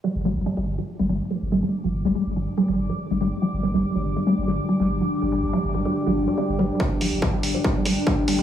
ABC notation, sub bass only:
X:1
M:4/4
L:1/16
Q:1/4=142
K:Cdor
V:1 name="Sub bass" clef=bass
z G,,, G,,, G,,, z G,,, G,,, z2 G,,, G,,, z2 G,,, G,,, z | z G,,, G,,, G,,, z G,,, G,,, z2 G,,, G,,, z2 G,,, G,,, z | z G,,, G,,, G,,, z G,,, G,,, z2 G,,, G,,, z2 G,,, G,,, z | z G,,, G,,, G,,, z G,,, G,,, z2 G,,, G,,, z2 G,,, G,,, z |
z G,,, G,,, G,,, z G,,, G,,, z2 G,,, G,,, z2 G,,, G,,, z |]